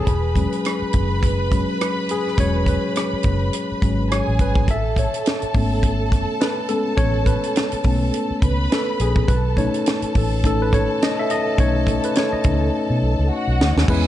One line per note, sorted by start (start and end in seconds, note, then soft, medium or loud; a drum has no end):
0.00 1.29 G#4 medium
0.06 0.45 E1 medium
0.06 4.06 B4 medium
0.06 4.06 B5 medium
0.06 kick loud
0.06 closed hi-hat medium
0.36 0.76 F#3 soft
0.36 0.76 G#3 soft
0.36 0.77 C#4 medium
0.36 kick medium
0.36 closed hi-hat medium
0.53 closed hi-hat soft
0.65 cross-stick medium
0.65 closed hi-hat medium
0.82 muted fingered electric bass stroke soft
0.93 1.65 F#1 medium
0.93 kick medium
0.93 closed hi-hat medium
1.23 kick medium
1.23 closed hi-hat medium
1.52 1.77 F#3 soft
1.52 1.78 G#3 soft
1.52 1.78 C#4 soft
1.52 kick medium
1.52 closed hi-hat medium
1.81 2.08 B4 medium
1.81 cross-stick loud
1.81 closed hi-hat medium
2.09 2.40 G#4 medium
2.09 closed hi-hat medium
2.28 cross-stick soft
2.38 2.76 E1 medium
2.38 2.78 F#3 medium
2.38 2.78 G#3 soft
2.38 2.79 C#4 medium
2.38 2.69 C#5 loud
2.38 kick loud
2.38 closed hi-hat medium
2.66 2.95 B4 medium
2.66 kick medium
2.66 closed hi-hat medium
2.96 cross-stick loud
2.96 closed hi-hat medium
3.13 muted fingered electric bass stroke soft
3.23 3.48 F#1 medium
3.23 kick medium
3.23 closed hi-hat medium
3.53 closed hi-hat medium
3.71 muted fingered electric bass stroke soft
3.82 4.20 G#1 medium
3.82 4.08 F#3 soft
3.82 4.08 G#3 soft
3.82 4.08 C#4 medium
3.82 kick medium
3.82 closed hi-hat medium
4.09 4.66 G#4 medium
4.09 4.41 C#5 medium
4.09 4.66 G#5 medium
4.09 cross-stick loud
4.09 closed hi-hat medium
4.28 4.38 A1 medium
4.39 4.68 G#1 medium
4.39 4.70 B4 medium
4.39 kick medium
4.39 closed hi-hat medium
4.56 kick loud
4.68 5.06 A1 loud
4.68 8.38 A4 medium
4.68 4.83 E5 loud
4.68 8.38 A5 medium
4.68 kick loud
4.68 closed hi-hat medium
4.96 5.25 C#5 medium
4.96 kick medium
4.96 closed hi-hat medium
5.14 closed hi-hat medium
5.26 snare loud
5.26 closed hi-hat medium
5.42 muted fingered electric bass stroke soft
5.42 closed hi-hat soft
5.54 6.25 G#1 medium
5.54 7.81 A3 soft
5.54 6.68 B3 soft
5.54 6.69 C#4 medium
5.54 kick medium
5.54 open hi-hat soft
5.83 kick medium
5.83 closed hi-hat medium
6.12 kick medium
6.12 closed hi-hat medium
6.41 6.71 B4 medium
6.41 snare loud
6.41 closed hi-hat medium
6.69 6.95 G#3 soft
6.69 6.95 B3 soft
6.69 6.96 C#4 medium
6.69 6.99 A4 medium
6.69 closed hi-hat medium
6.97 7.36 A1 medium
6.97 7.24 C#5 loud
6.97 kick loud
6.97 closed hi-hat medium
7.26 7.54 B4 medium
7.26 kick medium
7.26 closed hi-hat medium
7.43 closed hi-hat medium
7.56 snare loud
7.56 closed hi-hat medium
7.72 muted fingered electric bass stroke soft
7.72 closed hi-hat medium
7.84 8.09 B1 medium
7.84 9.24 A3 soft
7.84 9.24 B3 soft
7.84 9.25 C#4 medium
7.84 kick medium
7.84 open hi-hat soft
8.14 closed hi-hat medium
8.30 muted fingered electric bass stroke soft
8.42 8.66 C#2 medium
8.42 9.27 B4 medium
8.42 9.27 B5 medium
8.42 kick medium
8.42 closed hi-hat medium
8.72 8.86 A4 medium
8.72 snare loud
8.72 closed hi-hat medium
9.00 9.24 A#1 loud
9.00 9.30 G#4 medium
9.00 closed hi-hat medium
9.16 kick loud
9.28 9.67 B1 loud
9.28 13.27 A4 medium
9.28 9.58 B4 medium
9.28 13.27 A5 medium
9.28 kick loud
9.28 closed hi-hat medium
9.57 9.97 A3 medium
9.57 9.97 C#4 medium
9.57 9.98 D#4 medium
9.57 9.84 C#5 medium
9.57 kick medium
9.57 closed hi-hat medium
9.74 closed hi-hat medium
9.86 snare loud
9.86 closed hi-hat medium
10.02 muted fingered electric bass stroke soft
10.02 closed hi-hat medium
10.15 10.86 A1 medium
10.15 10.43 A4 medium
10.15 kick medium
10.15 open hi-hat medium
10.44 10.70 A3 soft
10.44 10.70 C#4 soft
10.44 10.70 D#4 medium
10.44 10.62 A4 medium
10.44 kick medium
10.44 closed hi-hat medium
10.62 10.73 B4 medium
10.73 11.03 C#5 loud
10.73 kick medium
10.73 closed hi-hat medium
11.02 11.17 D#5 medium
11.02 snare loud
11.02 closed hi-hat medium
11.19 11.31 E5 loud
11.30 11.60 D#5 loud
11.30 closed hi-hat medium
11.58 11.97 B1 loud
11.58 12.41 A3 medium
11.58 12.41 C#4 medium
11.58 12.41 D#4 medium
11.58 12.02 C#5 medium
11.58 kick loud
11.58 closed hi-hat medium
11.87 kick medium
11.87 closed hi-hat medium
12.03 12.17 B4 medium
12.03 closed hi-hat medium
12.15 12.34 C#5 medium
12.15 snare loud
12.15 closed hi-hat medium
12.33 12.59 D#5 medium
12.33 muted fingered electric bass stroke soft
12.44 12.69 C#2 loud
12.44 12.71 A3 soft
12.44 12.71 C#4 soft
12.44 12.71 D#4 medium
12.44 kick medium
12.44 closed hi-hat medium
12.90 13.00 B2 medium
13.02 13.16 B1 medium
13.19 13.29 C#2 medium
13.30 13.87 F#4 medium
13.30 13.87 F#5 medium
13.47 13.58 B1 medium
13.60 13.74 D2 medium
13.60 snare loud
13.76 13.86 D#2 medium
13.76 snare medium
13.88 14.07 E2 loud
13.88 14.07 G#3 medium
13.88 14.07 B3 medium
13.88 14.07 C#4 medium
13.88 14.07 E4 medium
13.88 14.07 G#4 medium
13.88 14.07 B4 medium
13.88 14.07 G#5 medium
13.88 kick loud
13.88 crash loud